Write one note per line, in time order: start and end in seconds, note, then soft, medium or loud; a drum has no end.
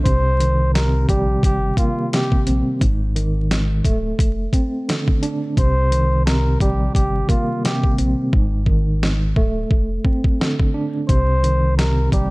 0.05 1.05 C2 loud
0.05 0.74 C3 medium
0.05 0.70 C5 loud
0.05 kick loud
0.05 closed hi-hat medium
0.40 2.81 D#3 medium
0.40 closed hi-hat medium
0.74 2.12 C3 medium
0.74 1.05 A#4 medium
0.74 snare loud
0.74 closed hi-hat medium
1.09 1.37 A#1 medium
1.09 2.82 G3 loud
1.09 1.40 G4 medium
1.09 kick medium
1.09 closed hi-hat medium
1.43 1.71 G1 medium
1.43 1.75 G4 medium
1.43 kick loud
1.43 closed hi-hat medium
1.77 2.81 A#3 medium
1.77 2.09 F4 medium
1.77 kick medium
1.77 closed hi-hat medium
2.13 2.82 C3 medium
2.13 2.45 G4 medium
2.13 snare loud
2.13 closed hi-hat medium
2.32 kick medium
2.47 2.62 A#1 loud
2.47 2.81 C4 medium
2.47 closed hi-hat medium
2.81 3.81 G#1 loud
2.81 3.49 G#2 medium
2.81 kick loud
2.81 closed hi-hat medium
3.16 3.85 D#3 medium
3.16 closed hi-hat medium
3.51 3.85 G#2 medium
3.51 snare loud
3.51 closed hi-hat medium
3.85 4.12 D1 loud
3.85 5.58 A3 medium
3.85 kick medium
3.85 closed hi-hat medium
4.19 4.47 F1 loud
4.19 kick loud
4.19 closed hi-hat medium
4.53 5.57 C4 medium
4.53 kick medium
4.53 closed hi-hat medium
4.89 5.58 D3 medium
4.89 snare loud
4.89 closed hi-hat loud
5.08 kick medium
5.23 5.57 D4 medium
5.23 closed hi-hat medium
5.57 6.57 C2 loud
5.57 6.25 C3 medium
5.57 6.23 C5 loud
5.57 kick loud
5.57 closed hi-hat medium
5.91 8.33 D#3 medium
5.91 closed hi-hat medium
6.26 7.64 C3 medium
6.26 6.57 A#4 medium
6.26 snare loud
6.26 closed hi-hat loud
6.60 6.88 A#1 medium
6.60 8.34 G3 medium
6.60 6.92 G4 medium
6.60 kick medium
6.60 closed hi-hat medium
6.94 7.23 G1 medium
6.94 7.26 G4 medium
6.94 kick loud
6.94 closed hi-hat medium
7.29 8.33 A#3 medium
7.29 7.61 F4 medium
7.29 kick medium
7.29 closed hi-hat medium
7.65 8.34 C3 medium
7.65 7.96 G4 medium
7.65 snare loud
7.65 closed hi-hat medium
7.84 kick medium
7.98 8.14 A#1 loud
7.98 8.33 C4 medium
7.98 closed hi-hat medium
8.33 9.33 G#1 loud
8.33 9.01 G#2 medium
8.33 kick loud
8.66 9.37 D#3 medium
8.66 kick medium
9.03 9.37 G#2 medium
9.03 snare loud
9.36 9.64 D1 loud
9.36 11.09 A3 medium
9.36 kick medium
9.71 9.99 F1 loud
9.71 kick loud
10.05 11.09 C4 medium
10.05 kick medium
10.24 kick loud
10.40 11.09 D3 medium
10.40 snare loud
10.59 kick medium
10.74 11.09 D4 medium
11.09 12.09 C2 loud
11.09 11.77 C3 medium
11.09 11.74 C5 loud
11.09 kick loud
11.09 closed hi-hat medium
11.43 12.30 D#3 medium
11.43 closed hi-hat medium
11.77 12.30 C3 medium
11.77 12.09 A#4 medium
11.77 snare loud
11.77 closed hi-hat medium
12.12 12.30 A#1 medium
12.12 12.30 G3 loud
12.12 12.30 G4 medium
12.12 kick medium
12.12 closed hi-hat medium